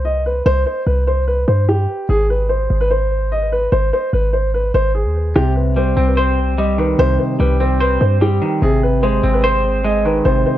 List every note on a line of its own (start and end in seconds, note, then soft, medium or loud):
0.00 0.42 C2 loud
0.05 0.21 D#5 medium
0.26 0.41 B4 medium
0.46 0.65 C2 loud
0.46 0.62 C5 loud
0.66 0.82 C5 medium
0.87 1.45 C2 loud
0.87 1.02 B4 medium
1.07 1.23 C5 medium
1.27 1.43 B4 medium
1.48 1.87 G2 loud
1.48 1.64 C5 medium
1.69 2.07 G4 medium
2.09 2.68 G#1 loud
2.09 2.25 G#4 loud
2.30 2.46 B4 medium
2.49 2.78 C5 medium
2.70 3.68 G#1 loud
2.81 2.88 B4 medium
2.90 3.29 C5 medium
3.32 3.47 D#5 medium
3.52 3.68 B4 medium
3.72 3.92 G#1 loud
3.72 3.88 C5 loud
3.93 4.09 C5 medium
4.13 4.72 G#1 loud
4.13 4.29 B4 medium
4.33 4.49 C5 medium
4.54 4.70 B4 medium
4.74 5.07 G#1 loud
4.74 4.90 C5 loud
4.95 5.33 G#4 medium
5.05 5.34 D#2 loud
5.36 5.94 C2 loud
5.36 6.38 C3 medium
5.36 5.51 G4 loud
5.56 5.72 B4 medium
5.76 6.57 G3 medium
5.76 6.05 C5 medium
5.97 6.95 C2 loud
5.97 6.99 C4 medium
6.07 6.15 B4 medium
6.17 6.56 C5 medium
6.17 7.19 C5 medium
6.58 7.39 G3 medium
6.58 6.74 D#5 medium
6.78 7.80 D#3 medium
6.78 6.95 B4 medium
6.99 7.18 C2 loud
6.99 8.01 C3 loud
6.99 7.15 C5 loud
7.19 7.35 C5 medium
7.40 7.98 C2 loud
7.40 8.20 G3 medium
7.40 7.56 B4 medium
7.60 8.62 C4 medium
7.60 7.76 C5 medium
7.80 7.96 B4 medium
7.80 8.62 C5 loud
8.01 8.40 G2 loud
8.01 8.17 C5 medium
8.21 8.62 G3 medium
8.21 8.60 G4 medium
8.42 8.62 D#3 medium
8.62 9.21 G#1 loud
8.62 9.64 C3 medium
8.62 8.78 G#4 loud
8.83 8.99 B4 medium
9.02 9.83 G#3 medium
9.02 9.31 C5 medium
9.23 10.21 G#1 loud
9.23 10.25 C4 medium
9.34 9.41 B4 medium
9.44 9.82 C5 medium
9.44 10.46 C5 loud
9.84 10.58 G#3 medium
9.84 10.01 D#5 medium
10.05 10.58 D#3 medium
10.05 10.21 B4 medium
10.25 10.45 G#1 loud
10.25 10.58 C3 loud
10.25 10.41 C5 loud
10.46 10.58 C5 medium